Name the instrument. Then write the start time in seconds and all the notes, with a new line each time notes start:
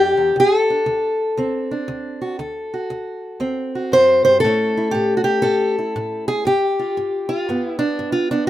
steel-string acoustic guitar
Already playing: F2 D4 G4
0.17 E2
0.36 D2 G#4
0.57 A4
0.70 D4
0.86 D2
1.37 D2 C4
1.71 D4
1.88 D2
2.22 F#4
2.39 D2 A4
2.74 F#4
2.90 D2
3.40 D2 C4
3.75 F#4
3.92 F#2 C5
4.25 G2 C5
4.40 A2 A4
4.44 A3 C#4 E4
4.77 E4
4.91 A2 G4
5.17 F#4
5.24 G4
5.42 A2 A4
5.79 E4
5.96 A2
6.28 G#4
6.45 G2 G4
6.79 F4
6.97 G2
7.29 F4
7.49 G2 B3
7.67 E4
7.79 D4
7.99 G2
8.12 F4
8.31 B3 D4